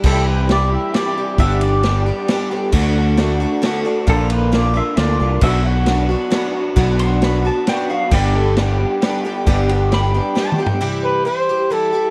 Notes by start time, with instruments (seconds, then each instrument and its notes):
0.04 fingered electric bass C2, clean electric guitar C3 E3 G3 E4 G4, pedal steel guitar A4, kick, crash
0.27 clean electric guitar G3 E4 G4, pedal steel guitar B4
0.48 clean electric guitar E3 G3 E4 G4, snare, ride
0.52 pedal steel guitar D5
0.70 clean electric guitar G3 E4 G4, pedal steel guitar E5
0.93 clean electric guitar C3 E3 G3 E4 G4, pedal steel guitar D5, snare, ride
1.15 clean electric guitar G3 E4 G4
1.38 fingered electric bass G1, clean electric guitar G2 D3 G3 B3 D4 G4, pedal steel guitar E5, kick, ride
1.60 clean electric guitar G3 B3 D4 G4, pedal steel guitar D5, ride
1.83 clean electric guitar G3 B3 D4 G4, snare, ride
2.04 clean electric guitar G3 B3 D4 G4
2.27 clean electric guitar G2 D3 G3 B3 D4 G4, snare, ride
2.50 clean electric guitar G3 B3 D4 G4
2.72 fingered electric bass D2, clean electric guitar D3 A3 D4 F#4, kick, crash
2.96 clean electric guitar A3 D4 F#4
3.17 clean electric guitar D3 A3 D4 F#4, snare, ride
3.40 clean electric guitar A3 D4 F#4
3.63 clean electric guitar D3 A3 D4 F#4, snare, ride
3.84 clean electric guitar A3 D4 F#4
4.07 fingered electric bass A#1, clean electric guitar A#2 D3 A#3 D4 F4, twelve-string acoustic guitar F3, pedal steel guitar A4, kick, ride
4.30 clean electric guitar A#3 D4 F4, pedal steel guitar B4, ride
4.52 clean electric guitar D3 A#3 D4 F4, twelve-string acoustic guitar F3, pedal steel guitar D5, snare, ride
4.74 clean electric guitar A#3 D4 F4, pedal steel guitar E5
4.96 fingered electric bass D2, clean electric guitar A#2 D3 A#3 D4 F4, twelve-string acoustic guitar F3, pedal steel guitar D5, snare, ride
5.19 fingered electric bass C2, clean electric guitar A#3 D4 F4
5.41 fingered electric bass B1, clean electric guitar B2 F#3 B3 D4 F#4, pedal steel guitar E5, kick, crash
5.64 clean electric guitar B3 D4 F#4, pedal steel guitar F#5
5.85 clean electric guitar F#3 B3 D4 F#4, snare, ride
6.09 clean electric guitar B3 D4 F#4
6.31 clean electric guitar B2 F#3 B3 D4 F#4, snare, ride
6.54 clean electric guitar B3 D4 F#4
6.76 fingered electric bass B1, clean electric guitar B2 F#3 B3 D4 F#4, kick, ride
6.99 clean electric guitar B3 D4 F#4, pedal steel guitar C6, ride
7.21 clean electric guitar F#3 B3 D4 F#4, pedal steel guitar B5, snare, ride
7.45 clean electric guitar B3 D4 F#4, pedal steel guitar A5
7.67 clean electric guitar B2 F#3 B3 D4 F#4, pedal steel guitar G5, snare, ride
7.90 clean electric guitar B3 D4 F#4, pedal steel guitar F5
8.11 fingered electric bass G1, clean electric guitar G2 D3 G3 B3 D4 G4, pedal steel guitar D5, kick, crash
8.34 clean electric guitar G3 B3 D4 G4, pedal steel guitar A4
8.57 clean electric guitar G3 B3 D4 G4, pedal steel guitar G4, snare, ride
8.79 clean electric guitar G3 B3 D4 G4
9.01 clean electric guitar G2 D3 G3 B3 D4 G4, snare, ride
9.24 clean electric guitar G3 B3 D4 G4
9.47 fingered electric bass G1, clean electric guitar G2 D3 G3 B3 D4 G4, kick, ride
9.69 clean electric guitar G3 B3 D4 G4, ride
9.90 clean electric guitar G3 B3 D4 G4, pedal steel guitar B5, snare, ride
10.14 clean electric guitar G3 B3 D4 G4
10.35 clean electric guitar G2 D3 G3 B3 D4 G4, snare
10.40 pedal steel guitar A5
10.52 mid tom
10.58 clean electric guitar G3 B3 D4 G4
10.62 pedal steel guitar G5, floor tom
10.81 twelve-string acoustic guitar C3 E3 G3 E4 G4
11.04 flugelhorn B4
11.25 twelve-string acoustic guitar E3 G3 E4 G4, flugelhorn C5
11.49 twelve-string acoustic guitar G3 E4 G4
11.70 twelve-string acoustic guitar E3 G3 E4 G4, flugelhorn A4
11.92 twelve-string acoustic guitar G3 E4 G4